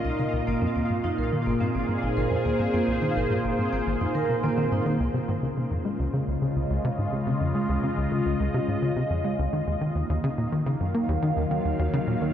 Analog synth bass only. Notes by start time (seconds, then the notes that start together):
0.05 C#2
0.19 C#3
0.33 C#2
0.47 G#1
0.61 F#2
0.76 D#2
0.90 G#2
1.04 F#2
1.18 C2
1.32 D#3
1.46 G#1
1.61 G#2
1.75 G#1
1.89 G#2
2.03 G#1
2.17 G#1
2.31 F#2
2.45 D#2
2.59 G#2
2.74 F#2
2.88 C2
3.02 D#3
3.16 G#1
3.30 G#2
3.44 G#1
3.58 G#2
3.72 G#1
3.87 G#1
4.01 F#2
4.15 D#3
4.29 C3
4.44 D#3
4.57 D#3
4.72 G#2
4.86 D#3
5.00 C#2
5.14 C3
5.28 G#2
5.42 C#3
5.57 C3
5.71 F2
5.85 G#3
5.99 C#2
6.13 C#3
6.28 C#2
6.42 C#3
6.56 C#2
6.70 C#2
6.84 C3
6.98 G#2
7.12 C#3
7.27 C3
7.41 F2
7.55 G#3
7.69 C#2
7.83 C#3
7.97 C#2
8.12 C#3
8.26 C#2
8.40 C#2
8.54 C3
8.68 G#2
8.82 C#3
8.96 C3
9.10 F2
9.24 G#3
9.39 C#2
9.53 D#3
9.67 D#2
9.81 D#3
9.95 D#2
10.09 D#2
10.24 C#3
10.38 A#2
10.52 D#3
10.66 C#3
10.80 F#2
10.94 A#3
11.09 D#2
11.23 D#3
11.37 D#2
11.51 D#3
11.65 D#2
11.79 D#2
11.93 C#3
12.07 A#2
12.21 D#3